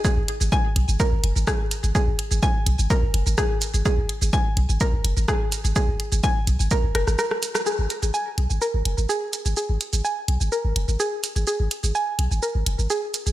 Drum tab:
HH |--x---x---x---xx|--x---x---x---xx|--x---x---x---xx|--xx--x---x---xx|
SH |x--xx--xx--xx-xx|x--xx--xx--xx-xx|x--xx--xx--xx-xx|x--xx-xxx--xx-xx|
SD |------------r---|------------r---|------------r---|----------rrrr-r|
BD |o---o---o---o---|o---o---o---o---|o---o---o---o---|o---o---o-------|

HH |--xx--x---x---xx|--xx--x---x---xx|--xx--x---x---xx|
SH |x-xxx--xx--xx-xx|x-xxx--xx--xx-xx|x-xxx--xx--xx-xx|
SD |----------------|----------------|----------------|
BD |----------------|----------------|----------------|